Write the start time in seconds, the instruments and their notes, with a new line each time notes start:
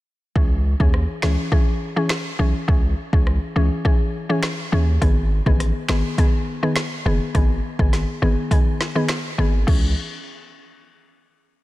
0.35 808-style bass C#2, synth pluck E3 C#4 G#4, kick
0.80 808-style bass D#2, synth pluck E3 C#4 G#4, kick
0.94 cross-stick
1.22 808-style bass C#2, synth pluck E3 C#4 G#4, finger snap, snare
1.52 synth pluck E3 C#4 G#4, kick
1.96 synth pluck E3 C#4 G#4
2.09 finger snap, snare
2.39 808-style bass B1, synth pluck E3 C#4 G#4
2.68 808-style bass C#2, synth pluck E3 C#4 G#4, kick
3.13 808-style bass C#2, synth pluck E3 C#4 G#4, kick
3.27 cross-stick
3.56 808-style bass C#2, synth pluck E3 C#4 G#4
3.85 synth pluck E3 C#4 G#4, kick
4.29 synth pluck E3 C#4 G#4
4.43 finger snap, snare
4.72 808-style bass D#2, synth pluck E3 C#4 G#4
5.02 808-style bass G#1, synth pluck D#3 B3 G#4, kick, closed hi-hat
5.46 808-style bass A1, synth pluck D#3 B3 G#4, kick
5.60 cross-stick, closed hi-hat
5.89 808-style bass G#1, synth pluck D#3 B3 G#4, finger snap, snare
6.18 synth pluck D#3 B3 G#4, kick, closed hi-hat
6.63 synth pluck D#3 B3 G#4
6.76 finger snap, snare, closed hi-hat
7.06 808-style bass F#1, synth pluck D#3 B3 G#4
7.35 808-style bass G#1, synth pluck D#3 B3 G#4, kick, closed hi-hat
7.79 808-style bass G#1, synth pluck D#3 B3 G#4, kick
7.93 snare, closed hi-hat
8.22 808-style bass G#1, synth pluck D#3 B3 G#4
8.51 synth pluck D#3 B3 G#4, kick, closed hi-hat
8.81 snare
8.95 synth pluck D#3 B3 G#4
9.09 finger snap, snare, closed hi-hat
9.38 808-style bass G#1, synth pluck D#3 B3 G#4
9.67 808-style bass C#2, synth pluck E3 C#4 G#4, kick, crash